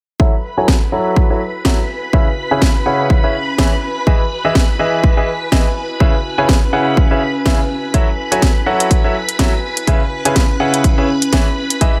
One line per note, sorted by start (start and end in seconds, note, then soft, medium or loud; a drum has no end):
0.20 0.32 F#3 medium
0.20 0.32 E4 medium
0.20 0.32 F#4 medium
0.20 12.00 F#4 medium
0.20 0.32 A4 medium
0.20 7.93 B4 medium
0.20 0.32 C#5 medium
0.20 0.32 E5 medium
0.20 7.93 B5 medium
0.20 kick loud
0.49 12.00 E4 medium
0.58 0.75 F#3 medium
0.58 0.75 E4 medium
0.58 0.75 F#4 medium
0.58 0.75 A4 medium
0.58 0.75 C#5 medium
0.58 0.75 G#5 medium
0.68 kick loud
0.68 snare loud
0.74 12.00 B4 medium
0.92 1.27 F#3 medium
0.92 1.27 E4 medium
0.92 1.27 F#4 medium
0.92 1.27 A4 medium
0.92 1.27 C#5 medium
0.92 1.27 F#5 medium
1.08 12.00 G#5 medium
1.16 kick loud
1.30 1.40 F#3 medium
1.30 1.40 E4 medium
1.30 1.40 F#4 medium
1.30 1.40 A4 medium
1.30 1.40 C#5 medium
1.30 1.40 E5 medium
1.65 1.77 F#3 medium
1.65 1.77 E4 medium
1.65 1.77 F#4 medium
1.65 1.77 A4 medium
1.65 1.77 C#5 medium
1.65 1.77 E5 medium
1.65 kick loud
1.65 snare loud
2.13 2.26 C#3 medium
2.13 4.71 C#4 medium
2.13 2.26 E4 medium
2.13 2.26 G#4 medium
2.13 2.26 B4 medium
2.13 2.26 C#5 medium
2.13 2.26 E5 medium
2.13 kick loud
2.51 2.68 C#3 medium
2.51 2.68 E4 medium
2.51 2.68 G#4 medium
2.51 2.68 B4 medium
2.51 2.68 C#5 medium
2.51 2.68 G#5 medium
2.62 kick loud
2.62 snare loud
2.86 3.20 C#3 medium
2.86 3.20 E4 medium
2.86 3.20 G#4 medium
2.86 3.20 B4 medium
2.86 3.20 C#5 medium
2.86 3.20 F#5 medium
3.10 kick loud
3.24 3.33 C#3 medium
3.24 3.33 E4 medium
3.24 3.33 G#4 medium
3.24 3.33 B4 medium
3.24 3.33 C#5 medium
3.24 3.33 E5 medium
3.58 3.71 E3 medium
3.58 3.71 E4 medium
3.58 3.71 G#4 medium
3.58 3.71 B4 medium
3.58 3.71 C#5 medium
3.58 3.71 E5 medium
3.58 kick loud
3.58 snare loud
4.07 4.19 E3 medium
4.07 4.19 E4 medium
4.07 4.19 G#4 medium
4.07 4.19 B4 medium
4.07 4.19 D#5 medium
4.07 4.19 E5 medium
4.07 kick loud
4.45 4.62 E3 medium
4.45 4.62 E4 medium
4.45 4.62 G#4 medium
4.45 4.62 B4 medium
4.45 4.62 D#5 medium
4.45 4.62 E5 medium
4.55 kick loud
4.55 snare loud
4.79 5.14 E3 medium
4.79 5.14 E4 medium
4.79 5.14 G#4 medium
4.79 5.14 B4 medium
4.79 5.14 D#5 medium
4.79 5.14 E5 medium
5.04 kick loud
5.17 5.27 E3 medium
5.17 5.27 E4 medium
5.17 5.27 G#4 medium
5.17 5.27 B4 medium
5.17 5.27 D#5 medium
5.17 5.27 E5 medium
5.52 5.65 E3 medium
5.52 5.65 E4 medium
5.52 5.65 G#4 medium
5.52 5.65 B4 medium
5.52 5.65 D#5 medium
5.52 5.65 E5 medium
5.52 kick loud
5.52 snare loud
6.00 6.13 C#3 medium
6.00 8.72 C#4 medium
6.00 6.13 E4 medium
6.00 6.13 G#4 medium
6.00 6.13 B4 medium
6.00 6.13 C#5 medium
6.00 6.13 E5 medium
6.00 kick loud
6.38 6.55 C#3 medium
6.38 6.55 E4 medium
6.38 6.55 G#4 medium
6.38 6.55 B4 medium
6.38 6.55 C#5 medium
6.38 6.55 G#5 medium
6.49 kick loud
6.49 snare loud
6.73 7.08 C#3 medium
6.73 7.08 E4 medium
6.73 7.08 G#4 medium
6.73 7.08 B4 medium
6.73 7.08 C#5 medium
6.73 7.08 F#5 medium
6.97 kick loud
7.11 7.21 C#3 medium
7.11 7.21 E4 medium
7.11 7.21 G#4 medium
7.11 7.21 B4 medium
7.11 7.21 C#5 medium
7.11 7.21 E5 medium
7.46 7.58 C#3 medium
7.46 7.58 E4 medium
7.46 7.58 G#4 medium
7.46 7.58 B4 medium
7.46 7.58 C#5 medium
7.46 7.58 E5 medium
7.46 kick loud
7.46 snare loud
7.94 8.07 F#3 medium
7.94 8.07 E4 medium
7.94 8.07 F#4 medium
7.94 8.07 A4 medium
7.94 12.00 B4 medium
7.94 8.07 C#5 medium
7.94 8.07 E5 medium
7.94 12.00 B5 medium
7.94 kick loud
7.94 closed hi-hat soft
8.32 8.49 F#3 medium
8.32 8.49 E4 medium
8.32 8.49 F#4 medium
8.32 8.49 A4 medium
8.32 8.49 C#5 medium
8.32 8.49 G#5 medium
8.32 closed hi-hat medium
8.42 kick loud
8.42 snare loud
8.42 closed hi-hat soft
8.66 9.01 F#3 medium
8.66 9.01 E4 medium
8.66 9.01 F#4 medium
8.66 9.01 A4 medium
8.66 9.01 C#5 medium
8.66 9.01 F#5 medium
8.80 closed hi-hat medium
8.91 kick loud
8.91 closed hi-hat medium
9.04 9.14 F#3 medium
9.04 9.14 E4 medium
9.04 9.14 F#4 medium
9.04 9.14 A4 medium
9.04 9.14 C#5 medium
9.04 9.14 E5 medium
9.29 closed hi-hat medium
9.39 9.52 F#3 medium
9.39 9.52 E4 medium
9.39 9.52 F#4 medium
9.39 9.52 A4 medium
9.39 9.52 C#5 medium
9.39 9.52 E5 medium
9.39 kick loud
9.39 snare loud
9.39 closed hi-hat soft
9.77 closed hi-hat medium
9.87 10.00 C#3 medium
9.87 12.00 C#4 medium
9.87 10.00 E4 medium
9.87 10.00 G#4 medium
9.87 10.00 B4 medium
9.87 10.00 C#5 medium
9.87 10.00 E5 medium
9.87 kick loud
9.87 closed hi-hat soft
10.25 10.42 C#3 medium
10.25 10.42 E4 medium
10.25 10.42 G#4 medium
10.25 10.42 B4 medium
10.25 10.42 C#5 medium
10.25 10.42 G#5 medium
10.25 closed hi-hat medium
10.36 kick loud
10.36 snare loud
10.36 closed hi-hat soft
10.60 10.95 C#3 medium
10.60 10.95 E4 medium
10.60 10.95 G#4 medium
10.60 10.95 B4 medium
10.60 10.95 C#5 medium
10.60 10.95 F#5 medium
10.74 closed hi-hat medium
10.84 kick loud
10.84 closed hi-hat medium
10.98 11.08 C#3 medium
10.98 11.08 E4 medium
10.98 11.08 G#4 medium
10.98 11.08 B4 medium
10.98 11.08 C#5 medium
10.98 11.08 E5 medium
11.22 closed hi-hat medium
11.33 11.45 E3 medium
11.33 11.45 E4 medium
11.33 11.45 G#4 medium
11.33 11.45 B4 medium
11.33 11.45 C#5 medium
11.33 11.45 E5 medium
11.33 kick loud
11.33 snare loud
11.33 closed hi-hat soft
11.70 closed hi-hat medium
11.81 11.94 E3 medium
11.81 11.94 E4 medium
11.81 11.94 G#4 medium
11.81 11.94 B4 medium
11.81 11.94 D#5 medium
11.81 11.94 E5 medium
11.81 kick loud
11.81 closed hi-hat medium